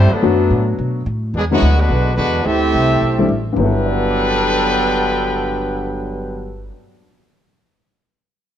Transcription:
Already playing: G2 G3 A3 C4 E4 G4 C5
0.11 D3 F#3 A3 B3 D4 A4, muted upright bass stroke
0.22 F#2 F#3 A3 B3 D4 F#4
0.51 A2
0.79 B2
1.06 A2
1.34 E2 B2 D3 F#3 G#3 B3 D4 G#4
1.51 B2 D3 F#3 G#3 B3 D4 E4 F#4
1.62 D2
1.78 D3 G#3 B3 D4 F#4 B4
1.90 B1
2.14 E2 D3 G#3 B3 D4 F#4 B4
2.42 D2 A3 C4 E4 G4 A4 E5
2.74 C2
3.01 B1
3.18 G3 A3 C4 D4 E4
3.28 A1
3.52 G1 G2 D3
3.57 G2 D3 F#3 B3 D4 A4 B4 G5
3.62 E4 A4
3.86 D5
3.93 F#5
4.01 A5
4.10 D6
4.20 F#6
4.31 A6
4.43 D7

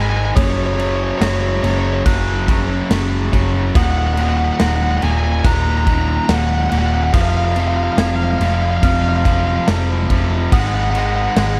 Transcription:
Already playing: G#1 G#2 D#3 G#3
0.02 G#5
0.10 G#5
0.17 G#5
0.25 G#5
0.35 F#1 F#2 C#3 F#3 C#5 D#6, kick, crash
0.43 C#5
0.50 C#5
0.58 C#5
0.66 C#5
0.73 C#5
0.78 F#2 C#3 F#3 C#5, crash
0.87 C#5
0.96 C#5
1.04 C#5
1.11 C#5
1.18 F#1 F#2 C#3 F#3 C#5 A#6, snare, crash
1.27 C#5
1.34 C#5
1.41 C#5
1.49 C#5
1.56 C#5
1.62 F#1 F#2 C#3 F#3 C#5, crash
1.71 C#5
1.79 C#5
1.86 C#5
1.93 C#5
2.05 F#1 F#2 C#3 F#3 F#6, kick, crash
2.48 F#2 C#3 F#3, kick, crash
2.90 F#1 F#2 C#3 F#3, snare, crash
3.33 F#1 F#2 C#3 F#3, kick, crash
3.75 D#1 D#2 A#2 D#3 F#5 D#6, kick, crash
3.84 F#5
3.91 F#5
3.98 F#5
4.07 F#5
4.14 D#2 F#5, crash
4.18 A#2 D#3 F#5
4.29 F#5
4.37 F#5
4.45 F#5
4.53 F#5
4.59 D#1 D#2 A#2 D#3 F#5 A#6, snare, crash
4.69 F#5
4.76 F#5
4.83 F#5
4.92 F#5
4.98 D#2 A#2 F#5
5.02 D#1 D#3 G#5, crash
5.12 G#5
5.18 G#5
5.25 G#5
5.32 G#5
5.40 D#2 G#5
5.44 D#1 A#2 D#3 A#5 F#6, kick, crash
5.54 A#5
5.62 A#5
5.70 A#5
5.78 A#5
5.85 D#2 A#2 D#3 A#5, kick, crash
5.94 A#5
6.02 A#5
6.09 A#5
6.17 A#5
6.25 D#1 D#2 A#5, snare, crash
6.30 A#2 D#3 F#5
6.39 F#5
6.47 F#5
6.55 F#5
6.63 F#5
6.70 D#1 D#2 A#2 D#3 F#5, crash
6.79 F#5
6.87 F#5
6.95 F#5
7.04 F#5
7.14 F1 F2 C3 F3 F5 D#6, kick, crash
7.21 F5
7.29 F5
7.37 F5
7.45 F5
7.52 F2 F5, crash
7.56 C3 F3 F5
7.68 F5
7.77 F5
7.84 F5
7.93 F5
7.98 F1 F2 C3 F3 F5 G#6, snare, crash
8.07 F5
8.16 F5
8.24 F5
8.31 F5
8.39 F1 F2 C3 F3 F5, crash
8.46 F5
8.55 F5
8.62 F5
8.71 F5
8.77 F5
8.83 F1 F2 C3 F3 F5 F6, kick, crash
8.94 F5
9.02 F5
9.09 F5
9.17 F5
9.24 F2 C3 F3 F5, kick, crash
9.33 F5
9.40 F5
9.48 F5
9.56 F5
9.68 F1 F2 C3 F3, snare, crash
10.09 F1 F2 C3 F3, kick, crash
10.52 G#1 G#2 D#3 G#3 F#5 D#6, kick, crash
10.60 F#5
10.67 F#5
10.75 F#5
10.82 F#5
10.91 G#2 F#5
10.95 D#3 G#3, crash
10.99 F#5
11.07 F#5
11.16 F#5
11.22 F#5
11.31 F#5
11.37 G#1 G#2 D#3 G#3 F#5 G#6, snare, crash
11.47 F#5
11.54 F#5

